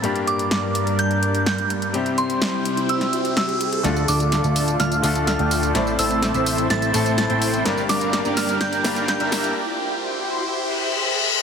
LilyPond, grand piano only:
\new Staff \with { instrumentName = "Grand piano" } { \time 4/4 \key d \minor \tempo 4 = 126 <g, g bes d' g'>1 | <c g c' e' g'>1 | <d a d' f' a'>2~ <d a d' f' a'>8 <d a d' f' a'>4. | <a, a c' e' d''>2~ <a, a c' e' d''>8 <a, a c' e' a'>4. |
<g, g bes d' g'>2~ <g, g bes d' g'>8 <g, g bes d' g'>4. | r1 | }